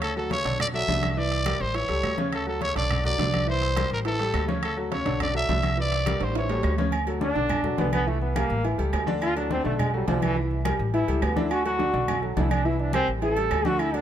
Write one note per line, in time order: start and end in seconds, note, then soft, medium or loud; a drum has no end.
0.00 0.40 D2 loud
0.00 0.11 C#3 medium
0.00 0.11 C#4 medium
0.00 0.16 A4 loud
0.00 0.11 C#5 medium
0.00 high conga soft
0.00 high timbale medium
0.00 claves medium
0.16 0.28 F#3 medium
0.16 0.28 F#4 medium
0.16 0.29 A4 medium
0.16 0.30 A4 medium
0.16 high conga soft
0.30 0.42 C#3 medium
0.30 0.43 C#4 medium
0.30 0.43 C#5 medium
0.30 0.58 C#5 loud
0.30 high conga medium
0.30 high timbale medium
0.30 low timbale medium
0.45 0.85 B1 medium
0.45 0.69 D3 medium
0.45 0.69 D4 medium
0.45 0.69 D5 medium
0.45 high conga soft
0.45 high timbale medium
0.60 0.67 D5 loud
0.60 high conga soft
0.60 low conga medium
0.60 high timbale loud
0.60 claves medium
0.74 0.86 F#3 medium
0.74 0.86 F#4 medium
0.74 0.86 A4 medium
0.74 1.11 E5 loud
0.74 high conga soft
0.88 1.55 C2 medium
0.88 1.12 D3 medium
0.88 1.12 D4 medium
0.88 1.12 D5 medium
0.88 high conga medium
0.88 high timbale medium
0.88 low timbale medium
1.03 high conga medium
1.03 high timbale medium
1.03 claves medium
1.11 1.19 E5 medium
1.17 1.41 E3 medium
1.17 1.41 E4 medium
1.17 1.62 D5 loud
1.17 1.41 E5 medium
1.17 high conga soft
1.32 high conga soft
1.32 high timbale medium
1.46 1.70 G3 medium
1.46 1.70 G4 medium
1.46 1.70 A#4 medium
1.46 high conga loud
1.46 high timbale loud
1.46 low timbale medium
1.46 claves medium
1.60 1.87 A1 medium
1.60 1.77 C5 loud
1.60 high conga soft
1.74 1.86 E3 medium
1.74 1.87 E4 medium
1.74 2.18 C#5 loud
1.74 1.87 E5 medium
1.74 high conga soft
1.74 high timbale medium
1.89 2.03 C#2 medium
1.89 2.13 G3 medium
1.89 2.13 G4 medium
1.89 2.13 A4 medium
1.89 high conga soft
1.89 high timbale medium
2.03 2.70 D2 loud
2.03 high conga soft
2.03 high timbale medium
2.03 low timbale medium
2.03 claves medium
2.18 2.42 C#3 medium
2.18 2.42 C#4 medium
2.18 2.42 C#5 medium
2.18 high conga medium
2.32 2.47 A4 medium
2.32 high conga soft
2.32 high timbale medium
2.32 claves medium
2.47 2.59 F#3 medium
2.47 2.59 F#4 medium
2.47 2.59 A4 medium
2.47 2.61 A4 medium
2.47 high conga soft
2.61 2.73 C#3 medium
2.61 2.73 C#4 medium
2.61 2.73 C#5 medium
2.61 2.75 C#5 loud
2.61 high conga medium
2.61 high timbale medium
2.61 low timbale medium
2.75 3.16 B1 medium
2.75 2.99 D3 medium
2.75 2.99 D4 medium
2.75 2.99 D5 medium
2.75 3.03 D5 medium
2.75 high conga soft
2.75 high timbale medium
2.90 high conga soft
2.90 low conga medium
2.90 high timbale medium
2.90 claves medium
3.04 3.16 F#3 medium
3.04 3.16 F#4 medium
3.04 3.17 A4 medium
3.04 3.45 D5 loud
3.04 high conga soft
3.04 low conga medium
3.18 3.85 C2 loud
3.18 3.42 D3 medium
3.18 3.42 D4 medium
3.18 3.42 D5 medium
3.18 high conga medium
3.18 high timbale medium
3.18 low timbale medium
3.33 high conga medium
3.33 high timbale medium
3.33 claves medium
3.47 3.71 E3 medium
3.47 3.71 E4 medium
3.47 3.89 C5 loud
3.47 3.71 E5 medium
3.47 high conga soft
3.62 high conga soft
3.62 high timbale medium
3.76 3.99 G3 medium
3.76 4.00 G4 medium
3.76 4.00 A#4 medium
3.76 high conga medium
3.76 high timbale medium
3.76 low timbale medium
3.76 claves medium
3.91 4.31 A1 medium
3.91 3.99 A#4 medium
3.91 high conga soft
4.05 4.17 E3 medium
4.05 4.17 E4 medium
4.05 4.46 A4 loud
4.05 4.17 E5 medium
4.05 high conga soft
4.05 high timbale medium
4.20 4.43 G3 medium
4.20 4.43 G4 medium
4.20 4.44 A4 medium
4.20 high conga soft
4.20 high timbale medium
4.34 5.00 D2 loud
4.34 high conga soft
4.34 high timbale medium
4.34 low timbale medium
4.34 claves medium
4.48 4.72 C#3 medium
4.48 4.72 C#4 medium
4.48 4.72 C#5 medium
4.48 high conga medium
4.63 4.77 A4 medium
4.63 high conga soft
4.63 high timbale medium
4.63 claves medium
4.77 4.89 F#3 medium
4.77 4.89 F#4 medium
4.77 4.89 A4 medium
4.77 high conga soft
4.91 5.03 C#3 medium
4.91 5.03 C#4 medium
4.91 5.03 C#5 medium
4.91 5.19 C#5 medium
4.91 high conga medium
4.91 high timbale medium
4.91 low timbale medium
5.05 5.46 B1 medium
5.05 5.29 D3 medium
5.05 5.29 D4 medium
5.05 5.30 D5 medium
5.05 high conga soft
5.05 high timbale medium
5.20 5.35 D5 loud
5.20 high conga soft
5.20 low conga medium
5.20 high timbale medium
5.20 claves medium
5.34 5.46 F#3 medium
5.34 5.46 F#4 medium
5.34 5.46 A4 medium
5.34 5.75 E5 loud
5.34 high conga soft
5.49 6.15 C2 loud
5.49 5.72 D3 medium
5.49 5.73 D4 medium
5.49 5.73 D5 medium
5.49 high conga medium
5.49 high timbale medium
5.49 low timbale medium
5.63 high conga medium
5.63 high timbale medium
5.63 claves medium
5.77 6.01 E3 medium
5.77 6.01 E4 medium
5.77 6.25 D5 loud
5.77 6.01 E5 medium
5.77 high conga soft
5.92 high conga soft
5.92 high timbale medium
6.06 6.30 G3 medium
6.06 6.30 G4 medium
6.06 6.30 A#4 medium
6.06 high conga medium
6.06 high timbale medium
6.06 low timbale medium
6.06 claves medium
6.20 6.61 A1 medium
6.20 6.36 C5 medium
6.20 high conga soft
6.20 high timbale medium
6.35 6.47 E3 medium
6.35 6.47 E4 medium
6.35 6.76 C#5 medium
6.35 6.47 E5 medium
6.35 high conga soft
6.35 high timbale medium
6.50 6.73 G3 medium
6.50 6.73 G4 medium
6.50 6.73 A4 medium
6.50 high conga soft
6.50 low timbale loud
6.63 7.30 D2 loud
6.63 high conga soft
6.63 low timbale medium
6.63 claves medium
6.78 6.90 C#3 medium
6.78 6.90 C#4 medium
6.78 6.90 C#5 medium
6.78 high conga medium
6.78 low timbale medium
6.92 high conga soft
6.92 low agogo loud
6.92 claves medium
7.07 7.19 F#3 medium
7.07 7.19 F#4 medium
7.07 7.19 A4 medium
7.07 high conga soft
7.07 low agogo medium
7.21 7.33 D3 medium
7.21 7.33 D4 medium
7.21 7.77 D4 loud
7.21 7.33 D5 medium
7.21 high conga medium
7.21 low timbale medium
7.35 7.75 B1 medium
7.35 7.59 D3 medium
7.35 7.59 D4 medium
7.35 7.59 D5 medium
7.35 high conga soft
7.49 high conga soft
7.49 low conga medium
7.49 low agogo loud
7.49 claves medium
7.64 7.76 F#3 medium
7.64 7.76 F#4 medium
7.64 7.76 A4 medium
7.64 high conga soft
7.64 low conga medium
7.78 8.45 C2 medium
7.78 8.01 D3 medium
7.78 7.93 B3 medium
7.78 8.02 D4 medium
7.78 8.02 D5 medium
7.78 high conga medium
7.78 low timbale medium
7.78 low agogo medium
7.93 8.09 B3 loud
7.93 high conga medium
7.93 low agogo loud
7.93 claves medium
8.07 8.30 E3 medium
8.07 8.21 A3 medium
8.07 8.31 E4 medium
8.07 8.31 E5 medium
8.07 high conga soft
8.22 8.38 B3 medium
8.22 high conga soft
8.35 8.59 G3 medium
8.35 8.64 A#3 loud
8.35 8.59 G4 medium
8.35 8.59 A#4 medium
8.35 high conga medium
8.35 low timbale medium
8.35 low agogo loud
8.35 claves medium
8.50 8.77 A1 loud
8.50 high conga soft
8.64 8.76 E3 medium
8.64 8.76 E4 medium
8.64 8.76 E5 medium
8.64 high conga soft
8.64 low agogo medium
8.78 8.92 C#2 medium
8.78 9.02 G3 medium
8.78 9.02 G4 medium
8.78 9.02 A4 medium
8.78 high conga soft
8.78 low agogo medium
8.93 9.59 D2 loud
8.93 high conga soft
8.93 low timbale medium
8.93 low agogo medium
8.93 claves medium
9.07 9.30 D3 medium
9.07 9.31 D4 loud
9.07 9.31 D5 loud
9.07 high conga medium
9.22 9.36 F4 loud
9.22 high conga soft
9.22 low agogo loud
9.22 claves medium
9.35 9.47 F#3 medium
9.35 9.50 D4 medium
9.35 9.48 F#4 medium
9.35 9.48 A4 medium
9.35 high conga soft
9.35 low agogo medium
9.50 9.62 D3 medium
9.50 9.65 C4 loud
9.50 9.62 D4 medium
9.50 9.62 D5 medium
9.50 high conga medium
9.50 low timbale medium
9.64 10.05 B1 medium
9.64 9.88 D3 medium
9.64 9.82 A3 medium
9.64 9.88 D4 medium
9.64 9.88 D5 medium
9.64 high conga soft
9.79 9.94 G#3 medium
9.79 high conga soft
9.79 low conga medium
9.79 low agogo loud
9.79 claves medium
9.93 10.05 F#3 medium
9.93 10.08 G3 medium
9.93 10.05 F#4 medium
9.93 10.05 A4 medium
9.93 high conga soft
10.07 10.74 C2 medium
10.07 10.31 D3 medium
10.07 10.24 F3 loud
10.07 10.31 D4 medium
10.07 10.31 D5 medium
10.07 high conga medium
10.07 low timbale medium
10.07 low agogo medium
10.22 10.36 E3 loud
10.22 high conga medium
10.22 low agogo loud
10.22 claves medium
10.36 10.60 E3 medium
10.36 10.60 E4 medium
10.36 10.60 E5 medium
10.36 high conga soft
10.51 high conga soft
10.65 10.88 G3 medium
10.65 10.89 G4 medium
10.65 10.89 A#4 medium
10.65 high conga medium
10.65 low timbale medium
10.65 low agogo loud
10.65 claves medium
10.79 11.06 A1 medium
10.79 high conga soft
10.94 11.05 E3 medium
10.94 11.06 E4 medium
10.94 11.25 E4 loud
10.94 11.06 E5 medium
10.94 high conga soft
10.94 low agogo medium
11.07 11.21 C#2 medium
11.07 11.31 G3 medium
11.07 11.31 G4 medium
11.07 11.32 A4 medium
11.07 high conga soft
11.07 low agogo medium
11.22 11.88 D2 medium
11.22 11.39 B3 medium
11.22 high conga soft
11.22 low timbale medium
11.22 low agogo loud
11.22 claves medium
11.36 11.60 D3 medium
11.36 11.60 D4 medium
11.36 11.54 E4 loud
11.36 11.60 D5 medium
11.36 high conga medium
11.51 11.65 F#4 loud
11.51 high conga soft
11.51 low agogo loud
11.51 claves medium
11.65 11.77 F#3 medium
11.65 11.77 F#4 medium
11.65 12.21 F#4 loud
11.65 11.77 A4 medium
11.65 high conga soft
11.65 low agogo medium
11.79 11.91 D3 medium
11.79 11.91 D4 medium
11.79 11.91 D5 medium
11.79 high conga medium
11.79 low timbale medium
11.93 12.34 B1 loud
11.93 12.17 D3 medium
11.93 12.17 D4 medium
11.93 12.17 D5 medium
11.93 high conga soft
12.08 high conga soft
12.08 low conga medium
12.08 low agogo loud
12.08 claves medium
12.22 12.34 F#3 medium
12.22 12.34 F#4 medium
12.22 12.34 A4 medium
12.22 high conga soft
12.37 13.03 C2 loud
12.37 12.60 D3 medium
12.37 12.60 D4 medium
12.37 12.53 E4 loud
12.37 12.60 D5 medium
12.37 high conga medium
12.37 low timbale medium
12.37 low agogo medium
12.51 12.67 D4 loud
12.51 high conga medium
12.51 low agogo loud
12.51 claves medium
12.65 12.89 E3 medium
12.65 12.89 E4 medium
12.65 12.82 E4 medium
12.65 12.89 E5 medium
12.65 high conga soft
12.79 12.94 D4 medium
12.79 high conga soft
12.93 13.17 G3 medium
12.93 13.08 C4 loud
12.93 13.17 G4 medium
12.93 13.17 A#4 medium
12.93 high conga loud
12.93 low timbale medium
12.93 low agogo loud
12.93 claves medium
13.07 13.48 A1 loud
13.07 high conga soft
13.22 13.34 E3 medium
13.22 13.34 E4 medium
13.22 13.68 A4 loud
13.22 13.34 E5 medium
13.22 high conga soft
13.22 low agogo medium
13.36 13.60 G3 medium
13.36 13.60 G4 medium
13.36 13.61 A4 medium
13.36 high conga soft
13.36 low agogo medium
13.51 14.01 D2 loud
13.51 high conga soft
13.51 low timbale medium
13.51 low agogo loud
13.51 claves medium
13.65 13.89 D3 loud
13.65 13.89 D4 medium
13.65 13.82 F#4 loud
13.65 13.89 D5 medium
13.65 high conga medium
13.79 13.96 E4 loud
13.79 high conga soft
13.79 low agogo medium
13.79 claves medium
13.94 14.01 F#3 medium
13.94 14.01 D4 loud
13.94 14.01 F#4 medium
13.94 14.01 A4 medium
13.94 high conga soft
13.94 low agogo medium